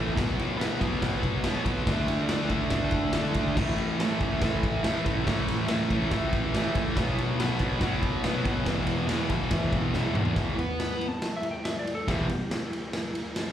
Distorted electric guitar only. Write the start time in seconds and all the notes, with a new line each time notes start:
Already playing: A2 E3 A3
0.14 B2 F#3 B3
0.58 B2 F#3 B3
0.80 B2 F#3 B3
1.01 B2 F#3 B3
1.45 B2 F#3 B3
1.65 B2 F#3 B3
1.87 D3 A3 D4
2.29 D3 A3 D4
2.50 D3 A3 D4
2.71 D3 A3 D4
3.13 D3 A3 D4
3.35 D3 A3 D4
3.57 A2 E3 A3
4.00 A2 E3 A3
4.21 A2 E3 A3
4.41 A2 E3 A3
4.84 A2 E3 A3
5.05 A2 E3 A3
5.25 A2 E3 A3
5.69 A2 E3 A3
5.91 A2 E3 A3
6.12 A2 E3 A3
6.54 A2 E3 A3
6.76 A2 E3 A3
6.96 B2 F#3 B3
7.39 B2 F#3 B3
7.60 B2 F#3 B3
7.82 B2 F#3 B3
8.24 B2 F#3 B3
8.44 B2 F#3 B3
8.66 E2 B2 E3
9.08 E2 B2 E3
9.30 E2 B2 E3
9.51 E2 B2 E3
9.94 E2 B2 E3
10.16 E2 B2 E3
10.37 E2 B2 E3
12.08 E2 B2 E3